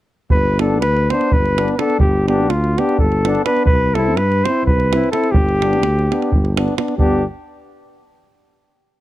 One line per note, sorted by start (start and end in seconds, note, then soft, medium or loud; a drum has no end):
0.30 0.83 G1 medium
0.30 0.58 B4 medium
0.30 davul low medium
0.59 0.81 B3 soft
0.59 0.81 D4 medium
0.59 0.80 A4 medium
0.59 davul high medium
0.81 1.09 D2 medium
0.81 1.12 B4 loud
0.81 davul high medium
0.97 davul high soft
1.10 1.32 B3 soft
1.10 1.32 D4 medium
1.10 1.34 C5 medium
1.10 davul high medium
1.21 davul high soft
1.32 1.69 G1 medium
1.32 1.73 B4 loud
1.32 davul low medium
1.46 davul high soft
1.58 1.78 B3 soft
1.58 1.77 D4 medium
1.58 davul high medium
1.68 davul high soft
1.73 1.80 B4 medium
1.78 1.99 B3 soft
1.78 1.98 D4 medium
1.78 1.99 A4 medium
1.78 davul high medium
1.90 davul high soft
1.98 2.50 G1 medium
1.98 2.26 G4 medium
1.98 davul low medium
2.28 2.49 B3 soft
2.28 2.49 D4 medium
2.28 2.51 G4 medium
2.28 davul high soft
2.49 2.77 D2 medium
2.49 2.80 F4 medium
2.49 davul high medium
2.64 davul high soft
2.78 2.99 B3 medium
2.78 2.99 D4 medium
2.78 2.99 G4 medium
2.78 davul high soft
2.89 davul high soft
2.99 3.36 G1 medium
2.99 3.42 A4 medium
2.99 davul low medium
3.12 davul high soft
3.25 3.46 B3 medium
3.25 3.44 D4 medium
3.25 davul high medium
3.35 davul high soft
3.45 3.66 B3 medium
3.45 3.65 D4 medium
3.45 3.65 B4 medium
3.45 davul high medium
3.57 davul high soft
3.65 4.17 C2 medium
3.65 3.96 B4 medium
3.65 davul low medium
3.95 4.17 C4 medium
3.95 4.16 E4 medium
3.95 4.19 A4 medium
3.95 davul high medium
4.16 4.43 G2 medium
4.16 4.46 B4 medium
4.16 davul high medium
4.32 davul high soft
4.45 4.66 C4 medium
4.45 4.66 E4 soft
4.45 4.66 C5 medium
4.45 davul high medium
4.65 5.02 C2 medium
4.65 5.09 B4 medium
4.65 davul low medium
4.80 davul high soft
4.92 5.12 C4 medium
4.92 5.11 E4 medium
4.92 davul high medium
5.04 davul high soft
5.11 5.33 C4 soft
5.11 5.32 E4 medium
5.11 5.33 A4 medium
5.11 davul high medium
5.24 davul high soft
5.31 5.83 G1 medium
5.31 6.56 G4 medium
5.31 davul low medium
5.49 davul high soft
5.61 5.82 B3 soft
5.61 5.82 D4 medium
5.61 davul high medium
5.73 davul high soft
5.82 6.09 D2 medium
5.82 davul high medium
5.99 davul high soft
6.10 6.31 B3 soft
6.10 6.32 D4 soft
6.10 davul high medium
6.22 davul high soft
6.31 6.68 G1 medium
6.31 davul low medium
6.45 davul high soft
6.57 6.77 B3 soft
6.57 6.76 D4 soft
6.57 davul high medium
6.68 davul high soft
6.77 6.97 B3 soft
6.77 6.97 D4 soft
6.77 davul high medium
6.88 davul high soft
6.97 7.24 G1 medium
6.97 7.24 B3 medium
6.97 7.24 D4 medium
6.97 7.24 G4 medium
6.97 davul low medium